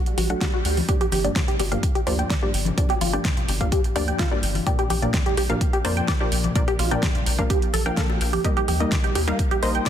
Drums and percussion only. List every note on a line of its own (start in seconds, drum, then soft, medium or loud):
0.06 closed hi-hat soft
0.18 open hi-hat loud
0.18 high conga medium
0.30 closed hi-hat soft
0.41 kick loud
0.41 snare loud
0.41 closed hi-hat loud
0.65 open hi-hat medium
0.77 open hi-hat medium
0.77 high conga medium
0.89 kick loud
0.89 closed hi-hat loud
0.89 high bongo soft
1.01 closed hi-hat soft
1.12 open hi-hat loud
1.12 high conga loud
1.25 closed hi-hat soft
1.36 kick loud
1.36 snare loud
1.36 closed hi-hat medium
1.36 low conga loud
1.48 closed hi-hat soft
1.48 low conga medium
1.60 open hi-hat loud
1.60 high bongo medium
1.72 closed hi-hat soft
1.83 kick loud
1.83 closed hi-hat medium
1.95 closed hi-hat soft
2.07 open hi-hat loud
2.19 closed hi-hat soft
2.19 high bongo soft
2.30 kick loud
2.30 snare loud
2.30 closed hi-hat loud
2.54 open hi-hat loud
2.65 closed hi-hat soft
2.65 high conga loud
2.65 low conga medium
2.78 kick loud
2.78 closed hi-hat loud
2.89 closed hi-hat soft
2.89 high bongo medium
3.01 open hi-hat loud
3.01 high conga medium
3.13 closed hi-hat soft
3.24 kick loud
3.24 snare loud
3.24 closed hi-hat medium
3.24 low conga medium
3.37 closed hi-hat soft
3.37 low conga medium
3.48 open hi-hat loud
3.48 high bongo soft
3.61 kick medium
3.61 closed hi-hat soft
3.72 kick loud
3.72 closed hi-hat medium
3.84 closed hi-hat soft
3.96 open hi-hat loud
4.08 closed hi-hat soft
4.19 kick loud
4.19 snare loud
4.19 closed hi-hat loud
4.19 high bongo medium
4.43 open hi-hat loud
4.55 open hi-hat medium
4.55 high conga medium
4.67 kick loud
4.67 closed hi-hat medium
4.79 closed hi-hat soft
4.79 high bongo soft
4.90 open hi-hat loud
4.90 high conga loud
5.02 closed hi-hat soft
5.13 kick loud
5.13 snare loud
5.13 closed hi-hat medium
5.13 low conga medium
5.26 closed hi-hat soft
5.26 low conga medium
5.37 open hi-hat loud
5.49 closed hi-hat soft
5.49 high bongo medium
5.61 kick loud
5.61 closed hi-hat medium
5.73 closed hi-hat soft
5.85 open hi-hat loud
5.97 closed hi-hat soft
6.08 kick loud
6.08 snare loud
6.08 closed hi-hat medium
6.08 high bongo soft
6.32 open hi-hat loud
6.44 closed hi-hat soft
6.44 high conga medium
6.44 low conga medium
6.56 kick loud
6.56 closed hi-hat medium
6.68 closed hi-hat soft
6.79 open hi-hat loud
6.79 high bongo medium
6.79 high conga medium
6.91 closed hi-hat soft
7.03 kick loud
7.03 snare loud
7.03 closed hi-hat medium
7.03 low conga medium
7.15 closed hi-hat soft
7.15 low conga medium
7.26 open hi-hat loud
7.39 kick medium
7.39 high bongo soft
7.50 kick loud
7.50 closed hi-hat medium
7.62 closed hi-hat soft
7.74 open hi-hat loud
7.74 high conga medium
7.86 closed hi-hat soft
7.97 kick loud
7.97 snare loud
7.97 closed hi-hat medium
8.10 high bongo medium
8.21 open hi-hat loud
8.33 open hi-hat medium
8.33 high conga medium
8.45 kick loud
8.45 closed hi-hat medium
8.45 high bongo soft
8.57 closed hi-hat soft
8.68 open hi-hat loud
8.68 high conga medium
8.80 closed hi-hat soft
8.92 kick loud
8.92 snare loud
8.92 closed hi-hat medium
8.92 low conga medium
9.03 closed hi-hat soft
9.03 low conga medium
9.15 open hi-hat loud
9.15 high bongo medium
9.28 finger snap medium
9.28 closed hi-hat soft
9.39 kick loud
9.39 closed hi-hat medium
9.51 closed hi-hat soft
9.63 open hi-hat loud
9.75 closed hi-hat soft
9.75 high bongo soft
9.86 snare loud
9.86 closed hi-hat medium